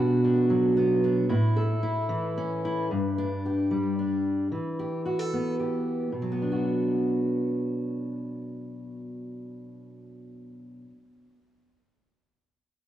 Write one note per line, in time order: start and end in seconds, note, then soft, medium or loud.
0.00 1.30 B2 medium
0.00 0.76 B3 medium
0.00 0.23 D4 medium
0.00 1.30 F#4 medium
0.24 1.03 D4 medium
0.50 1.27 F#3 medium
0.77 1.32 B3 medium
1.04 1.27 D4 medium
1.29 2.87 A2 medium
1.29 1.82 E4 medium
1.57 2.87 A4 medium
1.83 2.63 E4 medium
2.09 2.90 E3 medium
2.38 2.87 C#4 medium
2.65 2.88 E4 medium
2.91 4.48 G2 medium
3.18 3.98 D4 medium
3.45 4.49 G4 soft
3.71 4.48 G3 medium
3.99 4.48 D4 soft
4.52 6.12 E3 medium
4.79 5.05 G4 soft
5.05 5.19 F#4 soft
5.19 5.59 A4 soft
5.33 6.10 B3 soft
5.59 6.09 G4 soft
6.12 10.84 B2 soft
6.22 10.89 F#3 soft
6.32 10.94 B3 soft
6.42 10.99 D4 soft
6.52 11.04 F#4 soft